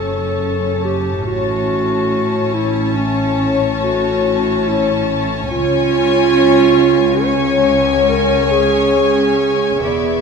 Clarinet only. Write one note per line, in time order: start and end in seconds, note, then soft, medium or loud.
0.00 0.83 A4 soft
0.84 1.25 G4 medium
1.26 2.55 F#4 medium
2.54 2.97 E4 medium
2.96 3.53 C#4 medium
3.83 4.69 F#4 medium
4.67 5.09 E4 medium
5.51 7.26 F4 medium
7.24 8.08 C#5 medium
8.09 8.53 A#4 medium
8.51 9.82 G#4 medium
9.83 10.21 G#4 medium